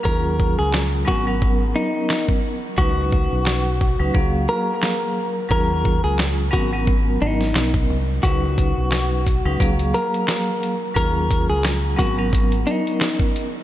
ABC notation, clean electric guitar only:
X:1
M:4/4
L:1/16
Q:"Swing 16ths" 1/4=88
K:Abdor
V:1 name="Clean electric guitar"
B3 A z2 G z3 E3 z3 | G8- G2 B6 | B3 A z2 G z3 E3 z3 | G8- G2 B6 |
B3 A z2 G z3 E3 z3 |]